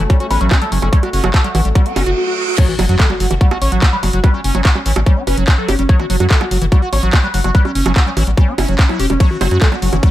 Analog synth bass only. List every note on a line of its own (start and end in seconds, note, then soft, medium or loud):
0.31 0.38 A1 medium
0.41 0.48 A1 medium
0.72 0.79 F#1 loud
0.82 0.89 F#1 medium
1.13 1.20 F#1 loud
1.24 1.31 F#1 medium
1.55 1.62 A1 medium
1.65 1.72 A1 medium
1.96 2.03 F#1 medium
2.06 2.13 F#1 medium
2.79 2.86 F#1 loud
2.89 2.96 F#2 medium
3.20 3.27 F#1 loud
3.31 3.38 F#1 medium
3.62 3.69 A1 medium
3.72 3.79 A1 medium
4.03 4.10 F#1 loud
4.13 4.20 F#1 medium
4.44 4.51 F#1 loud
4.55 4.62 F#1 medium
4.86 4.93 A1 medium
4.96 5.03 A1 medium
5.27 5.34 F#1 medium
5.37 5.45 F#1 medium
5.68 5.76 F#1 loud
5.79 5.86 F#1 medium
6.10 6.17 F#1 loud
6.20 6.27 F#2 medium
6.51 6.58 F#1 loud
6.62 6.69 F#1 medium
6.93 7.00 A1 medium
7.03 7.10 A1 medium
7.34 7.41 F#1 medium
7.44 7.51 F#1 medium
7.75 7.82 F#1 loud
7.86 7.93 F#1 medium
8.17 8.24 A1 loud
8.27 8.34 A1 medium
8.58 8.65 F#1 medium
8.68 8.76 F#1 medium
9.00 9.07 E1 loud
9.10 9.17 E1 medium
9.41 9.48 F#1 loud
9.51 9.58 F#2 medium
9.82 9.89 F#1 loud
9.93 10.00 F#1 medium